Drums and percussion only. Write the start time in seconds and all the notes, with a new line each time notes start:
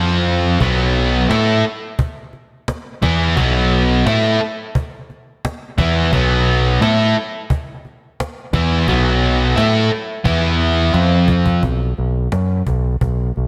0.26 cajon slap
0.44 cajon slap
0.61 cajon bass
0.95 cajon slap
1.31 cajon slap
1.64 cajon slap
1.99 cajon bass
2.33 cajon slap
2.68 cajon slap
3.02 cajon bass
3.21 cajon slap
3.37 cajon bass
3.72 cajon slap
4.07 cajon slap
4.41 cajon slap
4.75 cajon bass
5.10 cajon slap
5.45 cajon slap
5.78 cajon bass
6.13 cajon bass
6.47 cajon slap
6.82 cajon slap
7.16 cajon slap
7.50 cajon bass
7.85 cajon slap
8.20 cajon slap
8.53 cajon bass
8.72 cajon slap
8.88 cajon bass
9.23 cajon slap
9.58 cajon slap
9.91 cajon slap
10.25 cajon bass
10.59 cajon slap
10.93 cajon slap
11.28 cajon bass
11.46 cajon bass
11.63 cajon bass
11.97 cajon slap
12.32 cajon slap
12.67 cajon bass
13.01 cajon bass
13.36 cajon slap